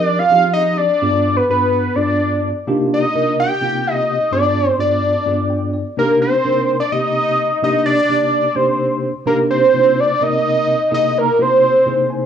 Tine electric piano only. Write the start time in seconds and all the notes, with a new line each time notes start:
Already playing: F3 C4 D#4 G4 A#4
0.30 F3 C4 D#4 G4 G#4
1.02 G2 B3 D4 F4 G#4
1.49 G2 B3 D4 F4 G#4
1.96 G2 B3 D4 F4 G#4
2.67 C3 A#3 D4 D#4 F4 G4
3.14 C3 A#3 D4 D#4 F4 A#4
3.61 C3 A#3 C4 D#4 F4 G4
4.32 G2 B3 D4 F4 G#4
4.78 G2 B3 D4 F4 G#4
5.26 G2 B3 D4 F4 G#4
5.50 G5
5.73 D5
5.97 C3 A#3 D4 D#4 G4
6.45 C3 A#3 D4 D#4 A#4
6.92 C3 A#3 C4 D#4 G4
7.62 C3 A#3 D4 D#4 G4
8.09 C3 A#3 D4 D#4 G4
8.55 C3 A#3 D4 D#4 G4
9.26 C3 A#3 D4 D#4 G4
9.74 C3 A#3 D4 D#4 F4
10.21 C3 A#3 C4 D#4 A#4
10.91 C3 A#3 D#4 E4 G#4
11.39 C3 A#3 D#4 E4 F#4
11.86 C3 A#3 D#4 E4 G#4
12.10 G#5